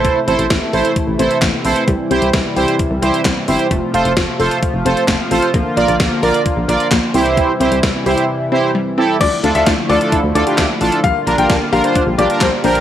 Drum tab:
CC |----------------|----------------|----------------|----------------|
HH |x-xxx-oxx-xxx-ox|x-xxx-oxx-xxx-ox|x-xxx-oxx-xxx-ox|x-xxx-oxx-xxx-ox|
CP |------------x---|------------x---|------------x---|------------x---|
SD |----o-------o---|----o-------o---|----o-------o---|----o-------o---|
BD |o---o---o---o---|o---o---o---o---|o---o---o---o---|o---o---o---o---|

CC |----------------|x---------------|----------------|
HH |x-xxx-ox--------|x-xxx-oxx-xxx-ox|x-xxx-oxx-xxx-ox|
CP |----------------|------------x---|------------x---|
SD |----o-----------|----o-------o---|----o-------o---|
BD |o---o-----------|o---o---o---o---|o---o---o---o---|